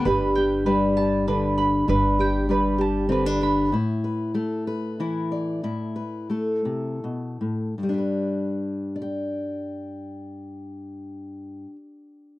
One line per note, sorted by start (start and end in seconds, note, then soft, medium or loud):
0.05 1.86 G1 medium
0.05 1.87 G2 medium
0.05 0.66 G3 soft
0.05 1.27 D4 soft
0.05 0.37 G4 medium
0.05 0.65 B4 medium
0.05 0.66 B4 medium
0.35 0.97 G4 soft
0.35 1.57 G5 medium
0.66 2.48 G3 medium
0.66 1.27 B4 medium
0.66 1.58 D5 soft
0.97 1.86 G4 soft
0.97 2.20 A5 medium
1.27 1.89 D3 medium
1.27 1.86 D4 soft
1.27 1.88 B4 medium
1.58 2.49 B4 soft
1.58 2.81 B5 medium
1.88 3.70 G1 medium
1.88 3.72 G2 medium
1.88 3.08 D4 soft
1.88 2.50 B4 medium
2.19 2.77 G4 soft
2.19 3.43 G5 medium
2.49 3.73 G3 medium
2.49 3.11 B4 medium
2.49 3.41 D5 soft
2.78 3.69 G4 medium
2.78 3.74 A5 medium
3.09 3.73 D3 medium
3.09 3.26 C4 soft
3.09 3.74 B4 medium
3.26 3.73 D4 soft
3.41 3.75 B4 soft
3.41 3.74 B5 medium
3.72 5.60 A2 medium
3.72 4.99 E4 soft
4.04 4.35 B4 soft
4.34 5.99 A3 medium
4.34 4.67 A4 soft
4.67 5.31 B4 medium
5.00 5.61 E3 soft
5.00 5.61 E4 soft
5.32 5.61 D5 soft
5.63 6.65 A2 soft
5.63 7.73 E4 soft
5.96 6.30 B4 soft
6.30 7.73 A3 soft
6.30 7.73 A4 soft
6.65 7.02 C3 soft
7.04 7.40 B2 soft
7.41 7.78 A2 soft
7.78 11.65 G2 soft
7.83 11.70 G3 soft
7.89 11.76 D4 soft
7.94 8.95 G4 soft
7.98 9.01 B4 soft
8.96 12.39 D5 soft
9.02 12.39 G5 soft